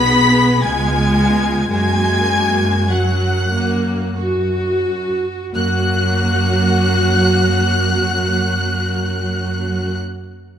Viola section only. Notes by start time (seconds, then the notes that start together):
Already playing: B3 G#4
0.66 B3 F4
1.72 A#3 F#4
2.90 F#3
3.51 A#3
4.16 F#4
5.52 A#3 F#4